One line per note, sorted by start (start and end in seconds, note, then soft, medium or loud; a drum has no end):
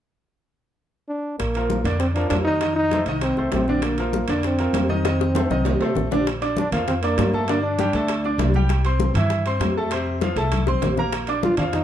1.09 1.37 D4 medium
1.39 1.82 A#1 medium
1.39 1.96 A#3 medium
1.39 high bongo medium
1.39 high conga soft
1.39 high timbale medium
1.54 1.80 F3 medium
1.54 1.81 F4 medium
1.54 1.81 A#4 medium
1.54 high bongo soft
1.54 high conga soft
1.54 high timbale medium
1.70 high bongo medium
1.70 high conga medium
1.70 low timbale medium
1.84 2.27 F2 medium
1.84 2.10 D3 medium
1.84 2.10 D4 medium
1.84 2.10 D5 medium
1.84 high bongo soft
1.84 high conga soft
1.84 high timbale medium
2.00 2.07 C4 medium
2.00 high bongo medium
2.00 high conga soft
2.00 high timbale medium
2.14 2.41 F3 medium
2.14 2.29 D4 medium
2.14 2.41 F4 medium
2.14 2.41 A#4 medium
2.14 high bongo soft
2.14 high conga soft
2.14 high timbale medium
2.29 3.01 F2 medium
2.29 2.36 D4 medium
2.29 high bongo medium
2.29 low bongo medium
2.29 high conga medium
2.29 high timbale medium
2.29 low timbale medium
2.44 2.59 D#3 medium
2.44 2.73 D#4 loud
2.44 2.59 D#4 medium
2.44 2.59 D#5 medium
2.61 2.87 D#3 medium
2.61 2.87 D#4 medium
2.61 2.87 D#5 medium
2.61 high bongo medium
2.61 high conga soft
2.61 high timbale medium
2.76 3.04 D#4 loud
2.76 high conga soft
2.91 3.04 A3 medium
2.91 3.05 A4 medium
2.91 3.05 C5 medium
2.91 high bongo medium
2.91 high conga medium
2.91 high timbale medium
2.91 low timbale soft
3.06 3.35 C2 medium
3.06 3.32 D#3 medium
3.06 3.33 D#4 medium
3.06 3.33 D#5 medium
3.06 high bongo soft
3.06 high timbale medium
3.21 3.50 C4 medium
3.21 high bongo medium
3.21 high conga soft
3.21 high timbale medium
3.37 3.52 C2 medium
3.37 3.63 A3 medium
3.37 3.63 A4 medium
3.37 3.63 C5 medium
3.37 high bongo soft
3.37 high conga soft
3.52 4.23 A#1 medium
3.52 3.85 C4 medium
3.52 high bongo medium
3.52 low bongo medium
3.52 high conga medium
3.52 high timbale medium
3.52 low timbale medium
3.68 3.93 D3 medium
3.68 3.93 D4 medium
3.68 3.93 D5 medium
3.68 high bongo soft
3.68 high conga medium
3.82 4.44 A#3 medium
3.82 high bongo medium
3.82 high conga soft
3.82 high timbale medium
3.98 4.24 F3 medium
3.98 4.24 F4 medium
3.98 4.24 A#4 medium
3.98 high bongo soft
3.98 high conga soft
3.98 high timbale medium
4.13 high bongo medium
4.13 high conga medium
4.13 low timbale medium
4.28 4.71 F2 medium
4.28 4.54 D3 medium
4.28 4.54 D4 medium
4.28 4.54 D5 medium
4.28 high bongo soft
4.28 high conga soft
4.28 high timbale medium
4.43 4.87 C4 medium
4.43 high bongo medium
4.43 high conga soft
4.43 high timbale medium
4.59 4.84 F3 medium
4.59 4.84 F4 medium
4.59 4.85 A#4 medium
4.59 high bongo soft
4.59 high conga soft
4.59 high timbale medium
4.73 5.44 F2 medium
4.73 high bongo medium
4.73 low bongo medium
4.73 high conga medium
4.73 high timbale medium
4.73 low timbale medium
4.89 5.02 D#3 medium
4.89 6.08 C4 medium
4.89 5.02 D#4 medium
4.89 5.02 D#5 medium
4.89 high conga medium
5.05 5.30 D#3 medium
5.05 5.30 D#4 medium
5.05 5.30 D#5 medium
5.05 high bongo medium
5.05 high conga soft
5.05 high timbale medium
5.20 high bongo medium
5.20 high conga soft
5.35 5.48 A3 medium
5.35 5.48 A4 medium
5.35 5.48 C5 medium
5.35 high bongo medium
5.35 high conga medium
5.35 high timbale medium
5.50 5.79 C2 medium
5.50 5.75 D#3 medium
5.50 5.76 D#4 medium
5.50 5.76 D#5 medium
5.50 low bongo medium
5.50 high conga medium
5.65 low bongo medium
5.65 high conga medium
5.65 low timbale medium
5.81 5.95 C2 medium
5.81 6.06 A3 medium
5.81 6.06 A4 medium
5.81 6.06 C5 medium
5.81 low timbale medium
5.95 6.66 A#1 medium
5.95 low bongo medium
5.95 low conga medium
6.11 6.24 D3 medium
6.11 6.24 D4 medium
6.11 6.25 D5 medium
6.11 low bongo loud
6.11 low conga medium
6.11 low timbale medium
6.26 high bongo medium
6.26 high conga soft
6.26 high timbale medium
6.42 6.67 D4 medium
6.42 6.67 D5 medium
6.42 6.67 D6 medium
6.42 high bongo soft
6.42 high conga soft
6.42 high timbale medium
6.57 6.72 D4 loud
6.57 high bongo medium
6.57 high conga medium
6.57 low timbale medium
6.72 7.15 F2 medium
6.72 6.97 F3 medium
6.72 6.86 A#3 medium
6.72 6.97 F4 medium
6.72 6.97 F5 medium
6.72 high bongo soft
6.72 high conga soft
6.72 low conga medium
6.72 high timbale medium
6.87 6.94 C4 medium
6.87 high bongo medium
6.87 high conga soft
6.87 low conga medium
6.87 high timbale medium
7.02 7.45 A#3 medium
7.02 7.28 D4 medium
7.02 7.28 D5 medium
7.02 7.28 D6 medium
7.02 high bongo soft
7.02 high conga soft
7.02 high timbale medium
7.18 7.88 G2 medium
7.18 high bongo medium
7.18 low bongo medium
7.18 high conga medium
7.18 high timbale medium
7.18 low timbale medium
7.34 7.46 A3 medium
7.34 7.46 A4 medium
7.34 7.46 A5 medium
7.34 high conga medium
7.47 7.74 D3 medium
7.47 7.62 A#3 medium
7.47 7.74 D4 medium
7.47 7.74 D5 medium
7.47 high bongo medium
7.47 high conga soft
7.47 high timbale medium
7.63 8.50 D4 loud
7.63 high conga soft
7.79 7.92 G3 medium
7.79 7.92 G4 medium
7.79 7.92 G5 medium
7.79 high bongo medium
7.79 high conga medium
7.79 high timbale medium
7.79 low timbale medium
7.93 8.36 D2 medium
7.93 8.19 A3 medium
7.93 8.19 A4 medium
7.93 8.20 A5 medium
7.93 high bongo soft
7.93 high conga soft
7.93 high timbale medium
8.08 high bongo medium
8.08 high conga soft
8.08 high timbale loud
8.24 8.50 D4 medium
8.24 8.50 D5 medium
8.24 8.50 D6 medium
8.24 high bongo soft
8.24 high conga soft
8.38 9.09 C2 medium
8.38 high bongo medium
8.38 low bongo medium
8.38 high conga medium
8.38 high timbale medium
8.38 low timbale medium
8.54 8.80 G3 medium
8.54 8.80 G4 medium
8.54 8.80 G5 medium
8.54 high bongo soft
8.54 high conga medium
8.69 high bongo medium
8.69 high conga soft
8.69 high timbale medium
8.85 9.10 C4 medium
8.85 9.10 C5 medium
8.85 9.10 C6 medium
8.85 high bongo soft
8.85 high conga soft
8.85 high timbale medium
9.00 high bongo medium
9.00 high conga medium
9.00 low timbale medium
9.14 9.57 G2 medium
9.14 9.41 E3 medium
9.14 9.41 E4 medium
9.14 9.41 E5 medium
9.14 high bongo soft
9.14 high conga soft
9.14 low conga medium
9.14 high timbale medium
9.30 high bongo medium
9.30 high conga soft
9.30 high timbale medium
9.46 9.71 C4 medium
9.46 9.71 C5 medium
9.46 9.71 C6 medium
9.46 high bongo soft
9.46 high conga soft
9.46 high timbale medium
9.60 10.31 F2 medium
9.60 high bongo medium
9.60 low bongo medium
9.60 high conga medium
9.60 high timbale medium
9.60 low timbale medium
9.77 9.89 A3 medium
9.77 9.89 A4 medium
9.77 9.89 A5 medium
9.91 10.17 C3 medium
9.91 10.17 C4 medium
9.91 10.17 C5 medium
9.91 high bongo medium
9.91 high conga soft
9.91 high timbale medium
10.07 high conga soft
10.21 10.35 F3 medium
10.21 10.35 F4 medium
10.21 10.35 F5 medium
10.21 high bongo medium
10.21 high conga medium
10.21 high timbale medium
10.21 low timbale medium
10.36 10.79 C2 medium
10.36 10.62 A3 medium
10.36 10.62 A4 medium
10.36 10.62 A5 medium
10.36 high bongo soft
10.36 high conga soft
10.36 high timbale medium
10.52 high bongo medium
10.52 high conga medium
10.52 high timbale medium
10.67 10.92 C4 medium
10.67 10.92 C5 medium
10.67 10.93 C6 medium
10.67 high bongo medium
10.67 high conga medium
10.82 11.52 A#1 medium
10.82 low bongo loud
10.82 low conga medium
10.82 high timbale medium
10.82 low timbale medium
10.97 11.23 A#3 medium
10.97 11.23 A#4 medium
10.97 11.23 A#5 medium
10.97 low bongo medium
10.97 low conga medium
11.12 high bongo medium
11.12 high conga soft
11.12 high timbale medium
11.27 11.53 D4 medium
11.27 11.53 D5 medium
11.27 11.54 D6 medium
11.27 high bongo soft
11.27 high conga soft
11.27 high timbale medium
11.43 11.57 F4 loud
11.43 high bongo medium
11.43 high conga loud
11.43 low timbale medium
11.57 11.84 F2 medium
11.57 11.84 F3 medium
11.57 11.65 D4 medium
11.57 11.84 F4 medium
11.57 11.84 F5 medium
11.57 high bongo soft
11.57 high conga soft
11.57 low conga medium
11.57 high timbale medium
11.73 11.84 D#4 medium
11.73 high bongo medium
11.73 high conga soft
11.73 low conga medium
11.73 high timbale medium